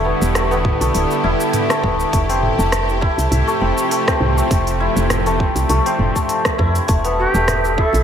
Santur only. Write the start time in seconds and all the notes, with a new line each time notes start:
Already playing: A3 E4
0.05 B3
0.35 A3
0.51 B3
0.81 A3
1.24 E4
1.70 A3
1.83 B3
2.13 A3
2.29 C4
2.58 A3
3.01 E4
3.47 A3
3.61 C4
3.91 A3
4.08 C4
4.37 A3
4.80 E4
5.26 A3
5.40 C4
5.69 A3
5.86 C4
6.16 A3
6.58 E4
6.88 A3
7.05 B3
7.34 A3
7.78 E4